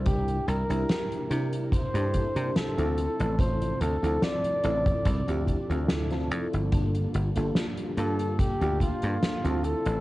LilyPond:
<<
  \new Staff \with { instrumentName = "Flugelhorn" } { \time 4/4 \key g \dorian \tempo 4 = 72 g'8 bes'4 r8 c''4 a'4 | c''8 a'8 d''2 r4 | r4. a'8 g'8 f'4 a'8 | }
  \new Staff \with { instrumentName = "FM electric piano" } { \time 4/4 \key g \dorian <d' e' g' bes'>8. <d' e' g' bes'>8. <d' e' g' bes'>8. <d' e' g' a'>8 <d' e' g' bes'>8 <c' e' f' a'>8. | <c' e' f' a'>8. <c' e' f' a'>8. <c' e' f' a'>8. <c' e' f' g'>8 <c' e' f' a'>8 <c' e' f' a'>8. | <bes d' f' a'>8. <bes d' f' a'>8. <bes d' f' a'>8. <bes d' f' g'>8 <bes d' f' a'>8 <c' e' f' a'>8. | }
  \new Staff \with { instrumentName = "String machine" } { \time 4/4 \key g \dorian << { <g bes e'>2.~ <g bes e'>8 <f a d'>8~ | <f a d'>1 | <g bes f'>2.~ <g bes f'>8 <f a d'>8 | } \\ { c1~ | c1 | d2.~ d8 c8 | } >> }
  \new Staff \with { instrumentName = "Slap bass" } { \clef bass \time 4/4 \key g \dorian c,8 c,16 c,16 r8 c8. g,16 r16 c16 r16 d,16 r16 a,,16~ | a,,8 d,16 d,16 r8 a,,16 r16 c,16 d,16 r16 d,8. f,16 g,,16~ | g,,8 g,,16 g,,16 r8 g,8. d,16 r16 g,16 r16 d,16 r16 a,,16 | }
  \new DrumStaff \with { instrumentName = "Drums" } \drummode { \time 4/4 <hh bd>16 hh16 hh16 hh16 <hh sn>16 hh16 hh16 hh16 <hh bd>16 hh16 <hh bd>16 hh16 <hh sn>16 hh16 hh16 hh16 | <hh bd>16 hh16 hh16 hh16 <hh sn>16 hh16 hh16 <hh bd>16 <hh bd>16 hh16 <hh bd>16 hh16 <hh sn>16 <hh sn>16 hh16 hh16 | <hh bd>16 hh16 hh16 hh16 <hh sn>16 hh16 hh16 hh16 <hh bd>16 hh16 <hh bd>16 hh16 <hh sn>16 hh16 hh16 hh16 | }
>>